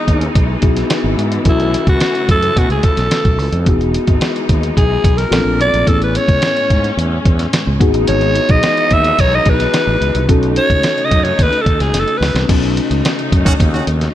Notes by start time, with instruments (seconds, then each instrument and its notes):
Already playing: string section E3 G#3 D#4, tine electric piano B3 D#4 F#4 G#4, alto saxophone D#4
0.08 fretless electric bass D#2, kick, closed hi-hat
0.21 closed hi-hat
0.35 fretless electric bass B1, kick, closed hi-hat
0.61 fretless electric bass B1, tine electric piano B3 D#4 F#4 G#4, kick, closed hi-hat
0.77 snare, closed hi-hat
0.90 snare, closed hi-hat
1.04 fretless electric bass G#1
1.17 fretless electric bass G#2, closed hi-hat
1.32 closed hi-hat
1.44 fretless electric bass B1, string section C#3 A3, tine electric piano C#4 E4 F#4 A4, kick, closed hi-hat
1.49 alto saxophone E4
1.60 closed hi-hat
1.74 closed hi-hat
1.87 fretless electric bass C#2, alto saxophone F#4, kick, closed hi-hat
2.00 snare, closed hi-hat
2.15 closed hi-hat
2.29 fretless electric bass F#2, alto saxophone A4, kick, closed hi-hat
2.43 closed hi-hat
2.57 fretless electric bass B2, alto saxophone F#4, kick, closed hi-hat
2.69 fretless electric bass C#2, alto saxophone G#4, closed hi-hat
2.83 alto saxophone A4, kick, closed hi-hat
2.97 fretless electric bass B1, snare, closed hi-hat
3.11 snare, closed hi-hat
3.25 fretless electric bass B1, kick, closed hi-hat
3.38 fretless electric bass C#2, open hi-hat
3.52 fretless electric bass F2, closed hi-hat
3.65 fretless electric bass E1, string section E3 G#3 D#4, tine electric piano B3 D#4 F#4 G#4, kick, closed hi-hat
3.81 closed hi-hat
3.94 closed hi-hat
4.07 fretless electric bass G#1, kick, closed hi-hat
4.21 snare, closed hi-hat
4.36 closed hi-hat
4.49 fretless electric bass D#2, kick, closed hi-hat
4.63 closed hi-hat
4.77 fretless electric bass B1, alto saxophone G#4, kick, closed hi-hat
5.04 fretless electric bass B1, kick, closed hi-hat
5.18 alto saxophone A#4, snare, closed hi-hat
5.31 fretless electric bass A#1, string section A#2 A3 D4, tine electric piano C4 D4 F4 A4, snare, closed hi-hat
5.45 fretless electric bass A#1
5.60 fretless electric bass B1, alto saxophone D5, closed hi-hat
5.74 fretless electric bass A#1, closed hi-hat
5.85 fretless electric bass A1, string section A2 G#3 C#4, tine electric piano B3 C#4 E4 G#4, alto saxophone A4, kick, closed hi-hat
6.02 alto saxophone B4, closed hi-hat
6.15 alto saxophone C#5, closed hi-hat
6.28 fretless electric bass C#2, kick, closed hi-hat
6.42 snare, closed hi-hat
6.57 closed hi-hat
6.70 fretless electric bass G#2, kick, closed hi-hat
6.84 closed hi-hat
6.97 fretless electric bass E2, closed hi-hat
7.25 fretless electric bass E2, kick, closed hi-hat
7.39 snare, closed hi-hat
7.53 snare, closed hi-hat
7.67 fretless electric bass C#2
7.79 fretless electric bass G#1, string section E3 D#4, tine electric piano B3 D#4 F#4 G#4, kick, closed hi-hat
7.94 fretless electric bass A1, closed hi-hat
8.07 fretless electric bass G#1, alto saxophone C#5, closed hi-hat
8.21 closed hi-hat
8.35 closed hi-hat
8.49 fretless electric bass B1, alto saxophone D#5, kick, closed hi-hat
8.63 snare, closed hi-hat
8.77 closed hi-hat
8.91 fretless electric bass D#2, alto saxophone E5, kick, closed hi-hat
9.04 closed hi-hat
9.19 fretless electric bass B1, alto saxophone C#5, kick, closed hi-hat
9.35 alto saxophone D#5
9.46 fretless electric bass B1, tine electric piano B3 D#4 F#4 G#4, alto saxophone B4, kick, closed hi-hat
9.60 snare, closed hi-hat
9.74 snare, closed hi-hat
9.87 fretless electric bass A1
10.01 fretless electric bass C#2, closed hi-hat
10.15 fretless electric bass C2, closed hi-hat
10.28 fretless electric bass B1, string section C#3 A3 D#4, tine electric piano C#4 D#4 F#4 A4, kick, closed hi-hat
10.43 closed hi-hat
10.56 alto saxophone C#5, closed hi-hat
10.70 fretless electric bass C#2, kick, closed hi-hat
10.83 snare, closed hi-hat
10.98 closed hi-hat
11.05 alto saxophone D#5
11.11 fretless electric bass F#2, kick, closed hi-hat
11.23 alto saxophone C#5, closed hi-hat
11.39 fretless electric bass D#2, alto saxophone B4, kick, closed hi-hat
11.53 closed hi-hat
11.62 alto saxophone A4
11.66 fretless electric bass D#2, kick, closed hi-hat
11.80 fretless electric bass C#2, alto saxophone G#4, snare, closed hi-hat
11.93 fretless electric bass F#1, snare, closed hi-hat
11.99 alto saxophone A4
12.08 closed hi-hat
12.18 fretless electric bass C#2, alto saxophone B4
12.23 snare, open hi-hat
12.35 fretless electric bass C2, snare, closed hi-hat
12.47 fretless electric bass B1, string section C#3 A3 D#4, tine electric piano C#4 D#4 F#4 A4, kick, closed hi-hat, crash
12.63 closed hi-hat
12.77 closed hi-hat
12.91 fretless electric bass C#2, closed hi-hat
13.05 snare, closed hi-hat
13.19 closed hi-hat
13.32 fretless electric bass F#2, kick, closed hi-hat
13.45 horn section D#3 C#4 F#4, kick, snare, closed hi-hat
13.60 fretless electric bass D#2, kick, closed hi-hat
13.73 horn section D#3 C#4 F#4, closed hi-hat
13.87 fretless electric bass D#2, closed hi-hat
14.01 snare, closed hi-hat